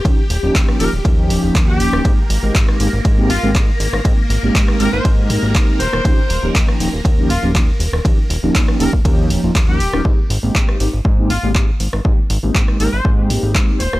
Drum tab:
RD |x---x---x---x---|x---x---x---x---|x---x---x---x---|x---x---x---x---|
HH |--o---o---o---o-|--o---o---o---o-|--o---o---o---o-|--o---o---o---o-|
CP |----x-------x---|----x-------x---|----x-------x---|----x-------x---|
SD |-----r---------r|-----r---------r|-----r---------r|-----r---------r|
BD |o---o---o---o---|o---o---o---o---|o---o---o---o---|o---o---o---o---|

RD |x---x---x---x---|----------------|----------------|
HH |--o---o---o---o-|--o---o---o---o-|--o---o---o---o-|
CP |----x-------x---|----x-------x---|----x-------x---|
SD |-----r---------r|-----r---------r|-----r---------r|
BD |o---o--oo---o---|o---o---o---o---|o---o---o---o---|